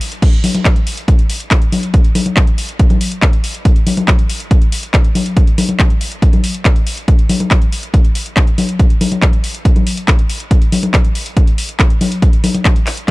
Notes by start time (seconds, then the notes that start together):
0.01 open hi-hat
0.12 closed hi-hat
0.22 kick, closed hi-hat, crash
0.33 closed hi-hat
0.44 open hi-hat, high conga
0.55 closed hi-hat, high conga
0.65 kick, clap, closed hi-hat
0.76 closed hi-hat
0.87 open hi-hat
0.97 closed hi-hat
1.08 kick, closed hi-hat
1.19 closed hi-hat
1.30 open hi-hat
1.40 closed hi-hat
1.51 kick, clap, closed hi-hat
1.62 closed hi-hat
1.72 open hi-hat, high conga
1.83 closed hi-hat
1.94 kick, closed hi-hat
2.04 closed hi-hat
2.15 open hi-hat, high conga
2.26 closed hi-hat, high conga
2.37 kick, clap, closed hi-hat
2.47 closed hi-hat
2.58 open hi-hat
2.69 closed hi-hat
2.79 kick, closed hi-hat
2.90 closed hi-hat, high conga
3.01 open hi-hat
3.12 closed hi-hat
3.22 kick, clap, closed hi-hat
3.33 closed hi-hat
3.44 open hi-hat
3.54 closed hi-hat
3.65 kick, closed hi-hat
3.76 closed hi-hat
3.87 open hi-hat, high conga
3.97 closed hi-hat, high conga
4.08 kick, clap, closed hi-hat
4.19 closed hi-hat
4.29 open hi-hat
4.40 closed hi-hat
4.51 kick, closed hi-hat
4.62 closed hi-hat
4.72 open hi-hat
4.83 closed hi-hat
4.94 kick, clap, closed hi-hat
5.04 closed hi-hat
5.15 open hi-hat, high conga
5.26 closed hi-hat
5.37 kick, closed hi-hat
5.47 closed hi-hat
5.58 open hi-hat, high conga
5.69 closed hi-hat, high conga
5.79 kick, clap, closed hi-hat
5.90 closed hi-hat
6.01 open hi-hat
6.12 closed hi-hat
6.22 kick, closed hi-hat
6.33 closed hi-hat, high conga
6.44 open hi-hat
6.54 closed hi-hat
6.65 kick, clap, closed hi-hat
6.76 closed hi-hat
6.87 open hi-hat
6.97 closed hi-hat
7.08 kick, closed hi-hat
7.19 closed hi-hat
7.29 open hi-hat, high conga
7.40 closed hi-hat, high conga
7.51 kick, clap, closed hi-hat
7.62 closed hi-hat
7.72 open hi-hat
7.83 closed hi-hat
7.94 kick, closed hi-hat
8.05 closed hi-hat
8.15 open hi-hat
8.26 closed hi-hat
8.37 kick, clap, closed hi-hat
8.47 closed hi-hat
8.58 open hi-hat, high conga
8.69 closed hi-hat
8.79 kick, closed hi-hat
8.90 closed hi-hat
9.01 open hi-hat, high conga
9.12 closed hi-hat, high conga
9.22 kick, clap, closed hi-hat
9.33 closed hi-hat
9.44 open hi-hat
9.55 closed hi-hat
9.65 kick, closed hi-hat
9.76 closed hi-hat, high conga
9.87 open hi-hat
9.97 closed hi-hat
10.08 kick, clap, closed hi-hat
10.19 closed hi-hat
10.29 open hi-hat
10.40 closed hi-hat
10.51 kick, closed hi-hat
10.62 closed hi-hat
10.72 open hi-hat, high conga
10.83 closed hi-hat, high conga
10.94 kick, clap, closed hi-hat
11.05 closed hi-hat
11.15 open hi-hat
11.26 closed hi-hat
11.37 kick, closed hi-hat
11.47 closed hi-hat
11.58 open hi-hat
11.69 closed hi-hat
11.79 kick, clap, closed hi-hat
11.90 closed hi-hat
12.01 open hi-hat, high conga
12.12 closed hi-hat
12.22 kick, closed hi-hat
12.33 closed hi-hat
12.44 open hi-hat, high conga
12.55 closed hi-hat, high conga
12.65 kick, clap, closed hi-hat
12.76 closed hi-hat
12.87 clap, open hi-hat
12.97 closed hi-hat